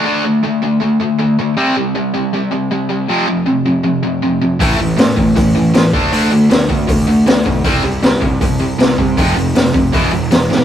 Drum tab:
HH |--------|--------|--------|o-o-o-o-|
SD |--------|--------|--------|--o---o-|
BD |--------|--------|--------|o--oo--o|

HH |o-o-o-o-|o-o-o-o-|o-o-o-o-|
SD |--o---o-|--o---o-|--o---oo|
BD |---oo--o|o--oo--o|o--oo---|